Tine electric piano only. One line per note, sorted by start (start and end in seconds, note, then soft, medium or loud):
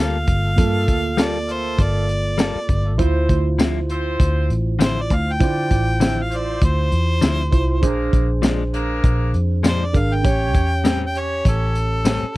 0.00 0.53 A#3 medium
0.00 0.54 F4 medium
0.00 0.54 A4 medium
0.56 2.95 A#3 medium
0.56 2.95 F4 medium
0.56 2.95 A4 medium
2.98 5.36 E4 medium
2.98 5.36 F4 medium
2.98 5.37 C5 medium
5.40 7.48 E4 medium
5.40 7.48 F4 medium
5.40 7.48 C5 medium
7.51 7.82 E4 medium
7.51 7.82 F4 medium
7.51 7.82 C5 medium
7.82 9.89 D4 medium
7.82 9.90 G#4 medium
7.82 9.90 C5 medium
9.93 10.24 D4 medium
9.93 10.24 G#4 soft
9.93 10.24 A#4 medium
10.23 12.37 C#4 medium
10.23 12.37 G4 medium
10.23 12.37 C#5 medium